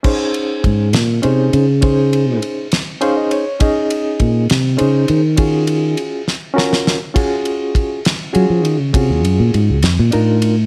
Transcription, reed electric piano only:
\new Staff \with { instrumentName = "Reed electric piano" } { \time 6/8 \key bes \minor \tempo 4. = 67 << { r2. | r2 f''16 ees''16 des''8 | r2. | r2. |
r2. | r2. | } \\ { <des' ees' aes' c''>4. r8 <des' ees' aes' c''>8 r8 | <des' ees' aes' c''>4. r8 <des' ees' aes' c''>8 r8 | <des' ees' aes' ees''>4. r8 <des' ees' aes' c''>8 r8 | <des' f' ges' aes'>4. r8 <des' f' ges' bes'>8 r8 |
<des' f' ges' aes'>4. r8 <des' f' ges' aes'>8 r8 | <des' f' ges' aes'>4. r8 <d' ees' f' bes'>8 r8 | } >> }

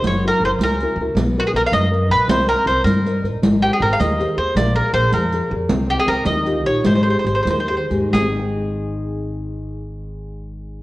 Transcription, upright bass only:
\new Staff \with { instrumentName = "Upright bass" } { \clef bass \time 6/8 \key aes \major \tempo 4. = 105 ges,,4 ges,,8 des,4 des,8 | b,,4 b,,8 fis,4 ais,,8 | c,4 c,8 g,4 a,,8 | aes,,4 aes,,8 ees,4 ees,8 |
bes,,4 bes,,8 f,4 f,8 | c,4 des,8 ees,4 bes,,8 | aes,,4 aes,,8 ees,4 ees,8 | aes,,2.~ |
aes,,2. | }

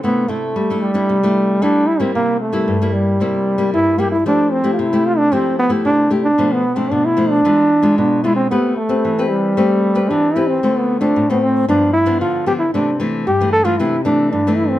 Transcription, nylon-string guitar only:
\new Staff \with { instrumentName = "Nylon-string guitar" } { \time 4/4 \key c \major \tempo 4 = 113 << { <a d' e'>8 <a d' e'>8 r16 <a d' e'>8 <a d' e'>8 <a d' e'>8. <a d' e'>8 r16 <g bes e'>16~ | <g bes e'>8 r16 <g bes e'>8 <g bes e'>8. <g bes e'>8. <g bes e'>8. <g bes e'>16 r16 | <a e' g'>8. <a e' g'>8 <a e' g'>8. <a e' g'>8. <a e' g'>8. <a e' g'>16 r16 | <f a d'>8 r16 <f a d'>8. <f a d'>8 <gis d' f'>8 r16 <gis d' f'>8. <gis d' f'>8 |
<c' g' b'>8 r16 <c' g' b'>8 <c' g' b'>8. <c' g' b'>8. <c' g' b'>8. <c' g' b'>8 | <a c' f'>8. <a c' f'>8 <a c' f'>8. <f b d'>8 r16 <f b d'>8. <f b d'>16 r16 | <e a d'>16 r16 <e a d'>8 r16 <e a d'>8 <e a d'>16 <e a d'>16 r16 <e a d'>8. <e a d'>8. | } \\ { c4 g4 c4 g4 | c4 g,4 c4 g,4 | f4 c4 f4 c4 | b,4 b,4 e4 b,4 |
a4 e4 a4 e4 | d4 a,4 g,4 d4 | c4 g,4 c4 g,4 | } >> }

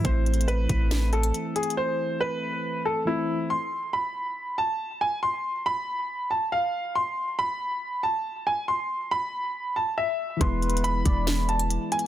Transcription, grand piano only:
\new Staff \with { instrumentName = "Grand piano" } { \time 4/4 \key a \minor \tempo 4 = 139 c''4 b'4. a'4 gis'8 | c''4 b'4. a'8 e'4 | c'''4 b''4. a''4 gis''8 | c'''4 b''4. a''8 f''4 |
c'''4 b''4. a''4 gis''8 | c'''4 b''4. a''8 e''4 | c'''4 b''4. a''4 gis''8 | }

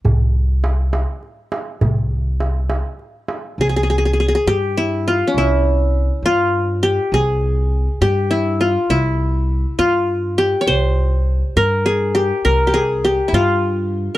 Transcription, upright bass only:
\new Staff \with { instrumentName = "Upright bass" } { \clef bass \time 6/8 \tempo 4. = 68 c,2 r4 | c,2 r4 | c,4. g,4. | c,4. g,4. |
c,4. g,4. | c,4. g,4. | c,4. g,4. | c,4. g,4. | }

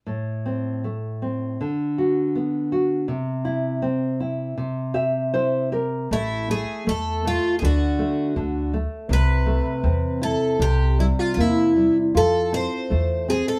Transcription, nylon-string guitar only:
\new Staff \with { instrumentName = "Nylon-string guitar" } { \time 2/4 \key c \major \tempo 4 = 80 a,8 c'8 a8 c'8 | d8 fis'8 b8 fis'8 | c8 e'8 c'8 e'8 | c8 <g' e''>8 <e' c''>8 <g' bes'>8 |
a8 a8 a8 a8 | d8 a8 d8 a8 | c8 a8 c'8 e'8 | c8 g8 bes8 g8 |
f'8 c'8 a8 c'8 | }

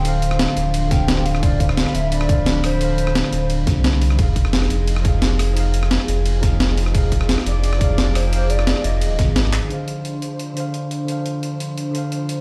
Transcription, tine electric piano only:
\new Staff \with { instrumentName = "Tine electric piano" } { \time 4/4 \key d \dorian \tempo 4 = 174 <d d' c'' f''>2~ <d d' c'' f''>8 <d d' c'' f''>4. | <d d' c'' f''>2~ <d d' c'' f''>8 <d d' c'' f''>4. | <d d' c'' f''>2~ <d d' c'' f''>8 r4. | <f ees' aes' f''>2~ <f ees' aes' f''>8 <f ees' aes' f''>4. |
<f ees' aes' f''>2~ <f ees' aes' f''>8 <f ees' aes' f''>4. | <f ees' aes' f''>2~ <f ees' aes' f''>8 <f ees' aes' f''>4. | <f ees' aes' f''>2~ <f ees' aes' f''>8 r4. | <d d' c'' f''>2~ <d d' c'' f''>8 <d d' c'' f''>4. |
<d d' c'' f''>2~ <d d' c'' f''>8 <d d' c'' f''>4. | }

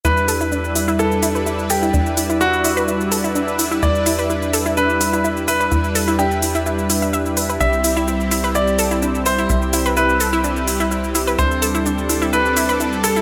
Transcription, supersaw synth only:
\new Staff \with { instrumentName = "Supersaw synth" } { \time 4/4 \key e \minor \tempo 4 = 127 <g d' e' b'>1~ | <g d' e' b'>1 | <g d' e' b'>1~ | <g d' e' b'>1 |
<g c' e' g'>1~ | <g c' e' g'>1 | <g c' d' a'>1 | }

